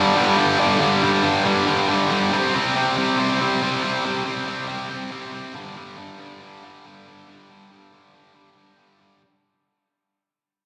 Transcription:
0.00 0.14 G2 medium
0.00 0.16 D3 medium
0.00 0.17 G3 medium
0.16 0.36 G2 medium
0.16 0.37 D3 medium
0.16 0.38 G3 medium
0.38 0.57 G2 medium
0.38 0.58 D3 medium
0.38 0.60 G3 medium
0.58 0.78 G2 medium
0.58 0.79 D3 medium
0.58 0.81 G3 medium
0.80 1.01 G2 medium
0.80 1.02 D3 medium
0.80 1.03 G3 medium
1.02 1.22 G2 medium
1.02 1.23 D3 medium
1.02 1.23 G3 medium
1.23 1.43 G2 medium
1.23 1.44 D3 medium
1.23 1.45 G3 medium
1.44 1.65 G2 medium
1.44 1.66 D3 medium
1.44 1.67 G3 medium
1.67 1.87 G2 medium
1.67 1.88 D3 medium
1.67 1.90 G3 medium
1.88 2.09 G2 medium
1.88 2.10 D3 medium
1.88 2.11 G3 medium
2.10 2.31 G2 medium
2.10 2.31 D3 medium
2.10 2.33 G3 medium
2.32 2.53 C3 medium
2.32 2.54 G3 medium
2.32 2.55 C4 loud
2.54 2.74 C3 medium
2.54 2.75 G3 medium
2.54 2.76 C4 medium
2.75 2.95 C3 medium
2.75 2.97 G3 medium
2.75 2.97 C4 medium
2.96 3.17 C3 medium
2.96 3.19 G3 medium
2.96 3.19 C4 medium
3.18 3.39 C3 medium
3.18 3.41 G3 medium
3.18 3.41 C4 medium
3.41 3.61 C3 medium
3.41 3.62 G3 medium
3.41 3.62 C4 medium
3.62 3.82 C3 medium
3.62 3.84 G3 medium
3.62 3.83 C4 medium
3.83 4.03 C3 medium
3.83 4.05 G3 medium
3.83 4.05 C4 medium
4.04 4.24 C3 medium
4.04 4.25 G3 medium
4.04 4.25 C4 medium
4.25 4.45 C3 medium
4.25 4.47 G3 medium
4.25 4.47 C4 medium
4.47 4.66 C3 medium
4.47 4.68 G3 medium
4.47 4.67 C4 medium
4.68 4.88 C3 medium
4.68 4.89 G3 medium
4.68 4.89 C4 medium
4.89 5.10 C3 medium
4.89 5.11 G3 loud
4.89 5.11 C4 medium
5.11 5.31 C3 medium
5.11 5.32 G3 medium
5.11 5.32 C4 medium
5.32 5.53 C3 medium
5.32 5.55 G3 medium
5.32 5.54 C4 medium
5.54 5.76 G2 medium
5.54 5.75 D3 medium
5.54 5.77 G3 loud
5.76 5.97 G2 medium
5.76 5.97 D3 loud
5.76 5.98 G3 medium
5.97 6.19 G2 medium
5.97 6.19 D3 medium
5.97 6.20 G3 medium
6.19 6.41 G2 medium
6.19 6.41 D3 medium
6.19 6.42 G3 medium
6.41 6.62 G2 medium
6.41 6.62 D3 medium
6.41 6.64 G3 medium
6.63 6.85 G2 medium
6.63 6.85 D3 medium
6.63 6.86 G3 loud
6.85 7.07 G2 medium
6.85 7.06 D3 medium
6.85 7.08 G3 medium
7.07 7.28 G2 medium
7.07 7.28 D3 medium
7.07 7.29 G3 medium
7.29 7.49 G2 medium
7.29 7.49 D3 medium
7.29 7.50 G3 medium
7.50 7.70 G2 medium
7.50 7.71 D3 medium
7.50 7.71 G3 medium
7.71 7.91 G2 medium
7.71 7.91 D3 medium
7.71 7.92 G3 medium
7.92 8.12 G2 medium
7.92 8.13 D3 medium
7.92 8.13 G3 medium
8.13 8.32 G2 medium
8.13 8.33 D3 medium
8.13 8.34 G3 medium
8.33 8.55 G2 medium
8.33 8.56 D3 medium
8.33 8.56 G3 loud
8.56 8.76 G2 medium
8.56 8.77 D3 medium
8.56 8.78 G3 medium
8.78 8.98 G2 medium
8.78 8.99 D3 medium
8.78 9.00 G3 medium
9.00 9.20 G2 medium
9.00 9.20 D3 medium
9.00 9.20 G3 medium

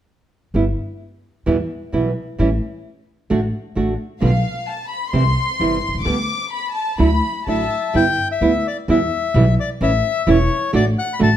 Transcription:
0.54 0.73 G1 medium
0.54 0.63 G3 soft
0.54 0.63 B3 soft
0.54 0.64 E4 medium
1.46 1.66 E2 medium
1.46 1.56 B2 medium
1.46 1.56 E3 soft
1.46 1.56 G3 medium
1.46 1.56 B3 medium
1.46 1.56 E4 medium
1.92 2.12 B1 soft
1.92 2.10 B2 soft
1.92 2.10 E3 soft
1.92 2.10 G3 soft
1.92 2.10 B3 soft
1.92 2.10 E4 soft
2.39 2.58 A1 medium
2.39 2.48 E3 medium
2.39 2.48 G3 medium
2.39 2.48 C#4 medium
2.39 2.48 E4 medium
3.30 3.50 A1 medium
3.30 3.39 D3 medium
3.30 3.39 A3 medium
3.30 3.39 D4 medium
3.30 3.39 F#4 medium
3.75 3.95 A1 soft
3.75 3.92 D3 soft
3.75 3.93 A3 soft
3.75 3.93 D4 soft
3.75 3.93 F#4 soft
4.20 4.41 B1 medium
4.20 4.30 B2 medium
4.20 4.30 D3 medium
4.20 4.30 G3 medium
4.20 4.30 B3 medium
4.20 4.31 F4 medium
4.20 4.64 F5 medium
4.67 4.90 A5 medium
4.89 5.11 B5 medium
5.12 5.33 C2 medium
5.12 5.22 C3 medium
5.12 5.22 E3 medium
5.12 5.22 G3 medium
5.12 5.22 C4 medium
5.12 5.23 E4 medium
5.12 6.01 C6 medium
5.60 5.79 G1 soft
5.60 5.76 C3 soft
5.60 5.77 E3 soft
5.60 5.77 G3 soft
5.60 5.77 C4 soft
5.60 5.77 E4 soft
5.88 5.94 B1 soft
5.94 5.99 C2 soft
6.00 6.05 C#2 soft
6.04 6.25 D2 medium
6.04 6.14 D3 medium
6.04 6.15 G3 medium
6.04 6.15 B3 medium
6.04 6.15 G4 medium
6.04 6.52 D6 medium
6.53 6.74 B5 medium
6.75 6.97 A5 medium
6.98 7.19 D2 medium
6.98 7.08 D3 medium
6.98 7.08 F#3 medium
6.98 7.08 A3 medium
6.98 7.08 D4 medium
6.98 7.09 E4 medium
6.98 7.44 B5 medium
7.47 7.67 A1 soft
7.47 7.64 D3 soft
7.47 7.64 F#3 soft
7.47 7.65 A3 soft
7.47 7.65 D4 soft
7.47 7.65 E4 soft
7.47 7.97 E5 medium
7.47 7.91 A5 soft
7.94 8.14 G1 medium
7.94 8.03 G3 medium
7.94 8.04 B3 medium
7.94 8.04 E4 medium
7.94 8.28 G5 medium
8.32 8.67 E5 medium
8.41 8.61 D2 medium
8.41 8.51 G3 medium
8.41 8.51 B3 medium
8.41 8.51 E4 medium
8.67 8.77 D5 medium
8.88 9.08 E2 medium
8.88 8.97 B2 medium
8.88 8.97 E3 medium
8.88 8.98 G3 medium
8.88 8.98 B3 medium
8.88 8.98 E4 medium
8.88 9.55 E5 medium
9.34 9.54 B1 medium
9.34 9.44 B2 medium
9.34 9.44 E3 medium
9.34 9.44 G3 medium
9.34 9.44 B3 medium
9.34 9.44 E4 medium
9.60 9.70 D5 medium
9.81 10.00 A1 medium
9.81 9.90 E3 medium
9.81 9.90 G3 medium
9.81 9.90 C#4 medium
9.81 9.90 E4 medium
9.81 10.29 E5 medium
10.27 10.46 E1 medium
10.27 10.36 E3 medium
10.27 10.36 G3 medium
10.27 10.36 C#4 medium
10.27 10.36 E4 medium
10.27 10.71 C#5 medium
10.73 10.93 A1 medium
10.73 10.82 D3 medium
10.73 10.82 A3 medium
10.73 10.82 D4 medium
10.73 10.83 F#4 medium
10.73 10.85 D5 medium
10.99 11.14 F#5 medium
11.13 11.20 B5 medium
11.19 11.37 A1 medium
11.19 11.28 D3 medium
11.19 11.28 A3 medium
11.19 11.29 D4 medium
11.19 11.29 F#4 medium
11.19 11.37 A5 medium

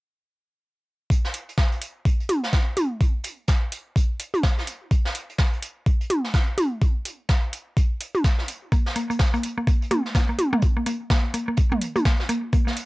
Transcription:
1.10 kick loud
1.10 closed hi-hat medium
1.25 snare soft
1.34 closed hi-hat medium
1.49 closed hi-hat soft
1.58 kick loud
1.58 snare medium
1.58 closed hi-hat medium
1.72 closed hi-hat soft
1.82 closed hi-hat medium
2.05 kick loud
2.05 closed hi-hat medium
2.20 closed hi-hat soft
2.29 closed hi-hat medium
2.29 high tom medium
2.44 snare soft
2.53 kick loud
2.53 snare loud
2.53 closed hi-hat medium
2.77 closed hi-hat medium
2.77 high tom medium
3.01 kick loud
3.01 closed hi-hat medium
3.24 closed hi-hat medium
3.48 kick loud
3.48 snare loud
3.48 closed hi-hat medium
3.72 closed hi-hat medium
3.96 kick loud
3.96 closed hi-hat medium
4.19 closed hi-hat medium
4.34 closed hi-hat soft
4.34 high tom medium
4.43 kick loud
4.43 snare loud
4.43 closed hi-hat medium
4.58 snare soft
4.67 closed hi-hat medium
4.91 kick loud
4.91 closed hi-hat medium
5.05 snare medium
5.15 closed hi-hat medium
5.29 closed hi-hat soft
5.38 kick loud
5.38 snare loud
5.38 closed hi-hat medium
5.53 closed hi-hat soft
5.62 closed hi-hat medium
5.86 kick loud
5.86 closed hi-hat medium
6.00 closed hi-hat soft
6.10 closed hi-hat medium
6.10 high tom medium
6.24 snare soft
6.34 kick loud
6.34 snare loud
6.34 closed hi-hat medium
6.58 closed hi-hat medium
6.58 high tom medium
6.81 kick loud
6.81 closed hi-hat medium
7.05 closed hi-hat medium
7.29 kick loud
7.29 snare loud
7.29 closed hi-hat medium
7.53 closed hi-hat medium
7.77 kick loud
7.77 closed hi-hat medium
8.01 closed hi-hat medium
8.15 closed hi-hat soft
8.15 high tom medium
8.24 kick loud
8.24 snare loud
8.24 closed hi-hat medium
8.39 snare soft
8.48 closed hi-hat medium
8.72 8.76 A#3 medium
8.72 kick loud
8.72 closed hi-hat medium
8.86 snare soft
8.96 9.00 A#3 medium
8.96 closed hi-hat medium
9.10 9.12 A#3 medium
9.10 closed hi-hat soft
9.19 kick loud
9.19 snare loud
9.19 closed hi-hat medium
9.34 9.37 A#3 loud
9.34 closed hi-hat soft
9.43 closed hi-hat medium
9.58 9.61 A#3 medium
9.67 9.70 A#3 medium
9.67 kick loud
9.67 closed hi-hat medium
9.82 closed hi-hat soft
9.91 9.95 A#3 loud
9.91 closed hi-hat medium
9.91 high tom medium
10.06 snare soft
10.15 10.19 A#3 medium
10.15 kick loud
10.15 snare loud
10.15 closed hi-hat medium
10.29 10.31 A#3 medium
10.39 closed hi-hat medium
10.39 high tom medium
10.53 10.56 A#3 loud
10.53 mid tom medium
10.62 kick loud
10.62 closed hi-hat medium
10.77 10.80 A#3 medium
10.86 10.89 A#3 medium
10.86 closed hi-hat medium
11.10 11.15 A#3 loud
11.10 kick loud
11.10 snare loud
11.10 closed hi-hat medium
11.34 11.38 A#3 medium
11.34 closed hi-hat medium
11.48 11.50 A#3 medium
11.57 kick loud
11.57 closed hi-hat medium
11.72 11.75 A#3 loud
11.72 mid tom medium
11.81 closed hi-hat medium
11.96 11.99 A#3 medium
11.96 closed hi-hat soft
11.96 high tom soft
12.05 12.08 A#3 medium
12.05 kick loud
12.05 snare loud
12.05 closed hi-hat medium
12.20 snare soft
12.29 12.34 A#3 loud
12.29 closed hi-hat medium
12.53 12.57 A#3 medium
12.53 kick loud
12.53 closed hi-hat medium
12.67 12.69 A#3 medium
12.67 snare soft
12.76 closed hi-hat medium

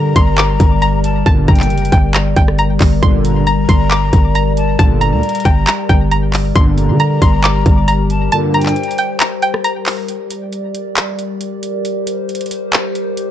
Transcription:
0.00 0.14 D3 loud
0.00 6.52 G3 medium
0.00 6.51 G4 medium
0.00 2.99 A#4 medium
0.00 6.51 D5 medium
0.00 0.11 A#5 medium
0.00 1.00 A#5 medium
0.16 0.58 G1 loud
0.16 0.34 C6 medium
0.16 kick medium
0.16 closed hi-hat medium
0.38 0.79 D6 medium
0.38 clap loud
0.38 closed hi-hat medium
0.60 1.23 G1 loud
0.60 kick medium
0.60 closed hi-hat medium
0.82 1.23 A#5 medium
0.82 closed hi-hat medium
1.04 1.25 A5 medium
1.04 closed hi-hat medium
1.26 1.47 G1 loud
1.26 1.68 G2 loud
1.26 1.68 A#2 medium
1.26 1.68 D3 loud
1.26 1.44 A5 loud
1.26 kick loud
1.26 closed hi-hat medium
1.48 1.72 G1 loud
1.48 2.10 G5 loud
1.48 1.90 A#5 medium
1.48 kick loud
1.48 closed hi-hat medium
1.55 closed hi-hat medium
1.60 clap medium
1.60 closed hi-hat medium
1.70 1.91 F#1 loud
1.70 closed hi-hat soft
1.78 closed hi-hat medium
1.85 closed hi-hat medium
1.92 2.35 G1 loud
1.92 2.10 G5 medium
1.92 kick medium
1.92 closed hi-hat medium
2.14 2.32 A#5 medium
2.14 clap loud
2.14 closed hi-hat medium
2.36 2.79 G1 loud
2.36 2.54 G5 medium
2.36 kick medium
2.36 closed hi-hat medium
2.48 cross-stick loud
2.59 3.00 A#5 medium
2.59 closed hi-hat medium
2.80 3.02 G1 loud
2.80 kick medium
2.80 clap medium
2.80 open hi-hat medium
3.02 3.66 G1 loud
3.02 3.44 G2 loud
3.02 3.44 A#2 loud
3.02 3.44 D3 loud
3.02 10.04 A#4 medium
3.02 3.44 C6 loud
3.02 kick loud
3.02 closed hi-hat medium
3.25 4.53 A#5 loud
3.25 closed hi-hat medium
3.47 3.64 A#5 medium
3.47 closed hi-hat medium
3.69 4.11 G1 loud
3.69 3.87 C6 medium
3.69 kick medium
3.69 closed hi-hat medium
3.91 4.32 D6 medium
3.91 clap loud
3.91 closed hi-hat medium
4.13 4.76 G1 loud
4.13 kick medium
4.13 closed hi-hat medium
4.35 4.77 A#5 medium
4.35 closed hi-hat medium
4.57 4.78 A5 medium
4.57 closed hi-hat medium
4.79 5.14 G1 loud
4.79 5.21 G2 loud
4.79 5.21 A#2 loud
4.79 5.21 D3 loud
4.79 4.97 A5 medium
4.79 kick loud
4.79 closed hi-hat medium
5.01 5.43 A#5 medium
5.01 6.07 A#5 loud
5.01 closed hi-hat medium
5.13 5.23 D2 loud
5.23 closed hi-hat medium
5.29 closed hi-hat medium
5.35 closed hi-hat medium
5.40 closed hi-hat medium
5.45 5.66 G1 loud
5.45 5.63 G5 medium
5.45 kick medium
5.45 closed hi-hat medium
5.67 5.85 A#5 medium
5.67 clap loud
5.67 closed hi-hat medium
5.89 6.53 G1 loud
5.89 6.07 G5 medium
5.89 kick medium
5.89 closed hi-hat medium
6.11 6.53 A#5 medium
6.11 closed hi-hat medium
6.33 clap medium
6.33 open hi-hat medium
6.55 6.91 G1 loud
6.55 6.97 G2 loud
6.55 6.97 A#2 loud
6.55 6.97 D3 loud
6.55 10.05 G3 medium
6.55 10.05 G4 medium
6.55 8.30 D5 medium
6.55 6.97 C6 loud
6.55 kick loud
6.55 closed hi-hat medium
6.78 8.06 A#5 medium
6.78 closed hi-hat medium
6.89 7.20 D3 loud
7.00 7.17 A#5 medium
7.00 closed hi-hat medium
7.22 7.64 G1 loud
7.22 7.39 C6 medium
7.22 kick medium
7.22 closed hi-hat medium
7.44 7.85 D6 medium
7.44 clap loud
7.44 closed hi-hat medium
7.66 8.29 G1 loud
7.66 kick medium
7.66 closed hi-hat medium
7.88 8.29 A#5 medium
7.88 closed hi-hat medium
8.10 8.31 A5 medium
8.10 closed hi-hat medium
8.32 8.74 G2 loud
8.32 8.74 A#2 medium
8.32 8.74 D3 loud
8.32 10.07 C5 medium
8.32 8.50 A5 loud
8.32 closed hi-hat medium
8.54 9.16 G5 medium
8.54 8.96 A#5 medium
8.54 closed hi-hat medium
8.61 closed hi-hat medium
8.66 clap medium
8.66 closed hi-hat medium
8.76 closed hi-hat soft
8.84 closed hi-hat medium
8.91 closed hi-hat medium
8.98 9.16 G5 medium
8.98 closed hi-hat medium
9.20 9.38 A#5 medium
9.20 clap loud
9.20 closed hi-hat medium
9.42 9.60 G5 medium
9.42 closed hi-hat medium
9.54 cross-stick loud
9.64 10.06 A#5 medium
9.64 closed hi-hat medium
9.86 clap medium
9.86 open hi-hat medium
10.08 13.31 G3 medium
10.08 13.31 G4 medium
10.08 13.31 A#4 medium
10.08 11.83 D5 medium
10.08 closed hi-hat medium
10.31 closed hi-hat medium
10.53 closed hi-hat medium
10.75 closed hi-hat medium
10.97 clap loud
10.97 closed hi-hat medium
11.19 closed hi-hat medium
11.41 closed hi-hat medium
11.63 closed hi-hat medium
11.85 13.31 C5 medium
11.85 closed hi-hat medium
12.07 closed hi-hat medium
12.29 closed hi-hat medium
12.35 closed hi-hat medium
12.41 closed hi-hat medium
12.46 closed hi-hat medium
12.51 closed hi-hat medium
12.73 clap loud
12.73 closed hi-hat medium
12.95 closed hi-hat medium
13.17 closed hi-hat medium

